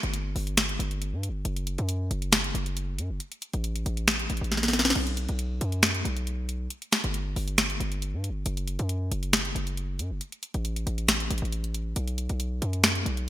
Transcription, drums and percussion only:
0.03 closed hi-hat
0.14 closed hi-hat
0.36 open hi-hat
0.47 closed hi-hat
0.57 finger snap, snare, closed hi-hat
0.69 closed hi-hat
0.80 closed hi-hat
0.91 closed hi-hat
1.02 closed hi-hat
1.23 closed hi-hat
1.45 closed hi-hat
1.56 closed hi-hat
1.67 closed hi-hat
1.78 closed hi-hat
1.89 closed hi-hat
2.11 closed hi-hat
2.22 closed hi-hat
2.32 finger snap, snare, closed hi-hat
2.44 closed hi-hat
2.55 closed hi-hat
2.66 closed hi-hat
2.77 closed hi-hat
2.98 closed hi-hat
3.20 closed hi-hat
3.32 closed hi-hat
3.42 closed hi-hat
3.53 closed hi-hat
3.64 closed hi-hat
3.76 closed hi-hat
3.86 closed hi-hat
3.97 closed hi-hat
4.08 finger snap, snare, closed hi-hat
4.19 closed hi-hat
4.30 closed hi-hat
4.37 closed hi-hat
4.44 closed hi-hat
4.52 snare, closed hi-hat
4.57 snare
4.63 snare, closed hi-hat
4.68 snare
4.73 snare, closed hi-hat
4.79 snare
4.85 snare
4.90 snare
4.95 crash
5.07 closed hi-hat
5.17 closed hi-hat
5.29 closed hi-hat
5.39 closed hi-hat
5.61 closed hi-hat
5.72 closed hi-hat
5.83 finger snap, snare, closed hi-hat
5.95 closed hi-hat
6.05 closed hi-hat
6.17 closed hi-hat
6.27 closed hi-hat
6.49 closed hi-hat
6.70 closed hi-hat
6.82 closed hi-hat
6.92 finger snap, snare, closed hi-hat
7.04 closed hi-hat
7.14 closed hi-hat
7.36 open hi-hat
7.48 closed hi-hat
7.58 finger snap, snare, closed hi-hat
7.70 closed hi-hat
7.81 closed hi-hat
7.92 closed hi-hat
8.02 closed hi-hat
8.24 closed hi-hat
8.46 closed hi-hat
8.57 closed hi-hat
8.68 closed hi-hat
8.79 closed hi-hat
8.89 closed hi-hat
9.12 closed hi-hat
9.23 closed hi-hat
9.33 finger snap, snare, closed hi-hat
9.45 closed hi-hat
9.56 closed hi-hat
9.67 closed hi-hat
9.77 closed hi-hat
9.99 closed hi-hat
10.21 closed hi-hat
10.32 closed hi-hat
10.43 closed hi-hat
10.54 closed hi-hat
10.65 closed hi-hat
10.76 closed hi-hat
10.87 closed hi-hat
10.98 closed hi-hat
11.08 finger snap, snare, closed hi-hat
11.20 closed hi-hat
11.30 closed hi-hat
11.38 closed hi-hat
11.45 closed hi-hat
11.52 closed hi-hat
11.64 closed hi-hat
11.74 closed hi-hat
11.96 closed hi-hat
12.08 closed hi-hat
12.18 closed hi-hat
12.29 closed hi-hat
12.40 closed hi-hat
12.62 closed hi-hat
12.73 closed hi-hat
12.84 finger snap, snare, closed hi-hat
12.95 closed hi-hat
13.06 closed hi-hat
13.17 closed hi-hat

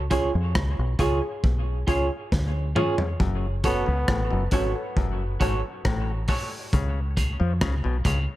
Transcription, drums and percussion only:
0.11 kick, closed hi-hat
0.55 kick, cross-stick
0.99 kick, closed hi-hat
1.44 kick
1.88 kick, closed hi-hat
2.32 kick, snare
2.76 mid tom
2.98 floor tom
3.20 kick
3.64 kick, closed hi-hat
4.08 kick, cross-stick
4.51 kick, closed hi-hat
4.97 kick
5.41 kick, closed hi-hat
5.85 kick, cross-stick
6.28 kick, open hi-hat
6.73 kick, hi-hat pedal
7.17 kick, closed hi-hat
7.61 kick, cross-stick
8.05 kick, closed hi-hat

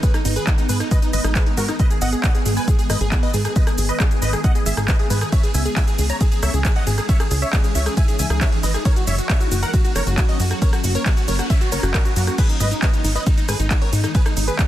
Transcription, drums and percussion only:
0.03 kick, closed hi-hat, shaker
0.14 cross-stick, closed hi-hat, shaker
0.25 open hi-hat, shaker
0.36 closed hi-hat, shaker
0.47 kick, clap, closed hi-hat, shaker
0.58 closed hi-hat, shaker
0.69 open hi-hat, shaker
0.80 cross-stick, closed hi-hat, shaker
0.91 kick, closed hi-hat, shaker
1.02 closed hi-hat, shaker
1.13 open hi-hat, shaker
1.24 cross-stick, closed hi-hat, shaker
1.35 kick, clap, closed hi-hat, shaker
1.46 closed hi-hat
1.57 open hi-hat, shaker
1.69 cross-stick, closed hi-hat, shaker
1.80 kick, closed hi-hat, shaker
1.91 closed hi-hat, shaker
2.02 open hi-hat, shaker
2.13 closed hi-hat, shaker
2.24 kick, clap, closed hi-hat, shaker
2.35 closed hi-hat, shaker
2.46 open hi-hat, shaker
2.57 closed hi-hat, shaker
2.68 kick, closed hi-hat, shaker
2.79 closed hi-hat, shaker
2.90 cross-stick, open hi-hat, shaker
3.01 closed hi-hat, shaker
3.12 kick, clap, closed hi-hat, shaker
3.23 closed hi-hat
3.34 open hi-hat, shaker
3.45 cross-stick, closed hi-hat, shaker
3.56 kick, closed hi-hat, shaker
3.67 cross-stick, closed hi-hat, shaker
3.78 open hi-hat, shaker
3.89 closed hi-hat, shaker
4.00 kick, clap, closed hi-hat, shaker
4.11 closed hi-hat, shaker
4.22 open hi-hat, shaker
4.33 cross-stick, closed hi-hat, shaker
4.44 kick, closed hi-hat, shaker
4.55 closed hi-hat, shaker
4.66 open hi-hat, shaker
4.77 cross-stick, closed hi-hat, shaker
4.88 kick, clap, closed hi-hat, shaker
4.99 closed hi-hat
5.10 open hi-hat, shaker
5.21 cross-stick, closed hi-hat, shaker
5.32 kick, closed hi-hat, ride, shaker
5.43 closed hi-hat, shaker
5.54 open hi-hat, shaker
5.66 closed hi-hat, shaker
5.77 kick, clap, closed hi-hat, ride, shaker
5.88 closed hi-hat, shaker
5.99 open hi-hat, shaker
6.10 closed hi-hat, shaker
6.21 kick, closed hi-hat, ride, shaker
6.32 closed hi-hat, shaker
6.43 cross-stick, open hi-hat, shaker
6.54 closed hi-hat, shaker
6.65 kick, clap, closed hi-hat, ride, shaker
6.76 closed hi-hat
6.87 open hi-hat, shaker
6.98 cross-stick, closed hi-hat, shaker
7.09 kick, closed hi-hat, ride, shaker
7.20 cross-stick, closed hi-hat, shaker
7.31 open hi-hat, shaker
7.42 closed hi-hat, shaker
7.53 kick, clap, closed hi-hat, ride, shaker
7.64 closed hi-hat, shaker
7.75 open hi-hat, shaker
7.86 cross-stick, closed hi-hat, shaker
7.97 kick, closed hi-hat, ride, shaker
8.08 closed hi-hat, shaker
8.19 open hi-hat, shaker
8.30 cross-stick, closed hi-hat, shaker
8.41 kick, clap, closed hi-hat, ride, shaker
8.52 closed hi-hat
8.63 open hi-hat, shaker
8.74 cross-stick, closed hi-hat, shaker
8.85 kick, closed hi-hat, ride, shaker
8.96 closed hi-hat, shaker
9.07 open hi-hat, shaker
9.18 closed hi-hat, shaker
9.29 kick, clap, closed hi-hat, ride, shaker
9.41 closed hi-hat, shaker
9.52 open hi-hat, shaker
9.63 closed hi-hat, shaker
9.74 kick, closed hi-hat, ride, shaker
9.85 closed hi-hat, shaker
9.96 cross-stick, open hi-hat, shaker
10.07 closed hi-hat, shaker
10.18 kick, clap, closed hi-hat, ride, shaker
10.29 closed hi-hat
10.40 open hi-hat, shaker
10.51 cross-stick, closed hi-hat, shaker
10.62 kick, closed hi-hat, ride, shaker
10.73 cross-stick, closed hi-hat, shaker
10.84 open hi-hat, shaker
10.95 closed hi-hat, shaker
11.06 kick, clap, closed hi-hat, ride, shaker
11.17 closed hi-hat, shaker
11.28 open hi-hat, shaker
11.39 cross-stick, closed hi-hat, shaker
11.50 kick, closed hi-hat, ride, shaker
11.61 closed hi-hat, shaker
11.72 open hi-hat, shaker
11.83 cross-stick, closed hi-hat, shaker
11.94 kick, clap, closed hi-hat, ride, shaker
12.05 closed hi-hat, shaker
12.16 open hi-hat, shaker
12.27 cross-stick, closed hi-hat, shaker
12.38 kick, closed hi-hat, crash, ride, shaker
12.49 closed hi-hat, shaker
12.60 open hi-hat, shaker
12.71 closed hi-hat, shaker
12.82 kick, clap, closed hi-hat, ride, shaker
12.94 closed hi-hat, shaker
13.04 open hi-hat, shaker
13.16 closed hi-hat, shaker
13.27 kick, closed hi-hat, ride, shaker
13.38 closed hi-hat, shaker
13.49 cross-stick, open hi-hat, shaker
13.60 closed hi-hat, shaker
13.71 kick, clap, closed hi-hat, ride, shaker
13.82 closed hi-hat
13.93 open hi-hat, shaker
14.04 cross-stick, closed hi-hat, shaker
14.15 kick, closed hi-hat, ride, shaker
14.26 cross-stick, closed hi-hat, shaker
14.37 open hi-hat, shaker
14.48 closed hi-hat, shaker
14.59 kick, clap, closed hi-hat, ride, shaker

